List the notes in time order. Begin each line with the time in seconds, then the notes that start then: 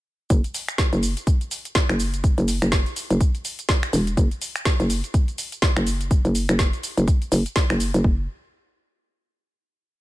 0.30 F#1, kick, closed hi-hat, cabasa
0.44 closed hi-hat, cabasa
0.54 open hi-hat, cabasa
0.68 finger snap, closed hi-hat, cabasa
0.78 kick, snare, closed hi-hat, cabasa
0.93 F#1, closed hi-hat, cabasa
1.03 open hi-hat, cabasa
1.17 closed hi-hat, cabasa
1.27 kick, closed hi-hat, cabasa
1.41 closed hi-hat, cabasa
1.51 open hi-hat, cabasa
1.65 closed hi-hat, cabasa
1.75 kick, snare, closed hi-hat, cabasa
1.89 F#1, finger snap, closed hi-hat, cabasa
2.00 open hi-hat, cabasa
2.14 closed hi-hat, cabasa
2.24 kick, closed hi-hat, cabasa
2.38 F#1, closed hi-hat, cabasa
2.48 open hi-hat, cabasa
2.62 F#1, finger snap, closed hi-hat, cabasa
2.72 kick, snare, closed hi-hat, cabasa
2.86 closed hi-hat, cabasa
2.96 open hi-hat, cabasa
3.10 F#1, closed hi-hat, cabasa
3.21 kick, closed hi-hat, cabasa
3.35 closed hi-hat, cabasa
3.45 open hi-hat, cabasa
3.59 closed hi-hat, cabasa
3.69 kick, snare, closed hi-hat, cabasa
3.83 finger snap, closed hi-hat, cabasa
3.93 E1, open hi-hat, cabasa
4.07 closed hi-hat, cabasa
4.17 F#1, kick, closed hi-hat, cabasa
4.31 closed hi-hat, cabasa
4.42 open hi-hat, cabasa
4.56 finger snap, closed hi-hat, cabasa
4.65 kick, snare, closed hi-hat, cabasa
4.80 F#1, closed hi-hat, cabasa
4.90 open hi-hat, cabasa
5.04 closed hi-hat, cabasa
5.14 kick, closed hi-hat, cabasa
5.28 closed hi-hat, cabasa
5.38 open hi-hat, cabasa
5.52 closed hi-hat, cabasa
5.62 kick, snare, closed hi-hat, cabasa
5.77 F#1, finger snap, closed hi-hat, cabasa
5.87 open hi-hat, cabasa
6.01 closed hi-hat, cabasa
6.11 kick, closed hi-hat, cabasa
6.25 F#1, closed hi-hat, cabasa
6.35 open hi-hat, cabasa
6.49 F#1, finger snap, closed hi-hat, cabasa
6.59 kick, snare, closed hi-hat, cabasa
6.73 closed hi-hat, cabasa
6.83 open hi-hat, cabasa
6.97 F#1, closed hi-hat, cabasa
7.08 kick, closed hi-hat, cabasa
7.22 closed hi-hat, cabasa
7.32 F#1, open hi-hat, cabasa
7.46 closed hi-hat, cabasa
7.56 kick, snare, closed hi-hat, cabasa
7.70 F#1, finger snap, closed hi-hat, cabasa
7.80 open hi-hat, cabasa
7.94 F#1, closed hi-hat, cabasa
8.04 F#1, kick